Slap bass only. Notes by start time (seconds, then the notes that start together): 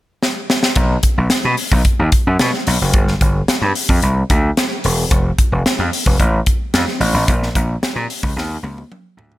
0.76 B1
1.18 B1
1.45 B2
1.72 B1
1.99 D#2
2.27 F#2
2.41 B2
2.67 B1
2.81 F#1
2.94 G1
3.21 G1
3.48 muted slap bass stroke
3.62 G2
3.89 F2
4.03 C2
4.30 D2
4.84 E1
5.11 F1
5.52 F1
5.66 muted slap bass stroke
5.79 F2
6.06 F1
6.20 A1
6.74 F2
7.00 A1
7.14 A1
7.28 A#1
7.56 A#1
7.82 muted slap bass stroke
7.96 A#2
8.23 C#2
8.36 D#2
8.63 C#2
9.17 D2